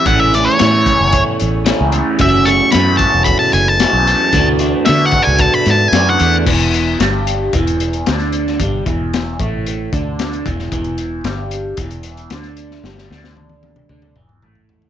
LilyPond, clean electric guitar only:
\new Staff \with { instrumentName = "Clean electric guitar" } { \time 4/4 \key a \major \tempo 4 = 113 <a, e a cis' e'>8 <a cis' e'>8 <e a cis' e'>8 <a cis' e'>4. <a, e a cis' e'>8 <a cis' e'>8 | <fis, cis fis a cis' fis'>8 <fis a cis' fis'>8 <fis a cis' fis'>8 <fis a cis' fis'>4. <fis, cis fis a cis' fis'>8 <fis a cis' fis'>8 | <d a d' fis'>8 <a d' fis'>8 <d a d' fis'>8 <a d' fis'>4. <d a d' fis'>8 <a d' fis'>8 | <e, e>4 <g, g>4 <e, e>4 <d d'>4 |
<g, g>8 <e, e>4 <a, a>4 <d d'>4 <e, e>8 | <e, e>4 <g, g>4 <e, e>4 <d d'>4 | <g, g>8 <d d'>4. <d d'>8 <e, e>8 <a, a>4 | }